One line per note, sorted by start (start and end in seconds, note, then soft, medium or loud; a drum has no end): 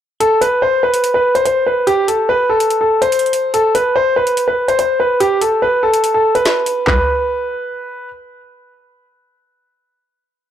0.20 0.40 A4 medium
0.20 closed hi-hat medium
0.41 0.60 B4 medium
0.41 closed hi-hat medium
0.62 0.81 C5 medium
0.83 1.12 B4 medium
0.94 closed hi-hat medium
1.04 closed hi-hat medium
1.14 1.33 B4 medium
1.35 1.44 C5 medium
1.35 closed hi-hat medium
1.45 1.65 C5 medium
1.45 closed hi-hat medium
1.67 1.86 B4 medium
1.87 2.06 G4 loud
1.87 closed hi-hat medium
2.08 2.27 A4 medium
2.08 closed hi-hat medium
2.29 2.48 B4 medium
2.49 2.79 A4 medium
2.60 closed hi-hat medium
2.70 closed hi-hat medium
2.81 3.00 A4 medium
3.02 3.51 C5 medium
3.02 closed hi-hat medium
3.12 closed hi-hat medium
3.19 closed hi-hat medium
3.26 closed hi-hat soft
3.33 closed hi-hat medium
3.54 3.73 A4 medium
3.54 closed hi-hat medium
3.75 3.94 B4 medium
3.75 closed hi-hat medium
3.96 4.15 C5 medium
4.16 4.46 B4 medium
4.27 closed hi-hat medium
4.37 closed hi-hat medium
4.48 4.67 B4 medium
4.68 4.78 C5 medium
4.68 closed hi-hat medium
4.79 4.98 C5 medium
4.79 closed hi-hat medium
5.00 5.19 B4 medium
5.20 5.40 G4 medium
5.20 closed hi-hat medium
5.41 5.60 A4 medium
5.41 closed hi-hat medium
5.62 5.81 B4 medium
5.83 6.12 A4 medium
5.94 closed hi-hat medium
6.04 closed hi-hat medium
6.14 6.33 A4 medium
6.35 6.84 B4 medium
6.35 closed hi-hat medium
6.45 finger snap medium
6.45 snare loud
6.45 closed hi-hat medium
6.66 closed hi-hat medium
6.87 8.08 B4 medium
6.87 kick loud
6.87 clap medium
6.87 floor tom loud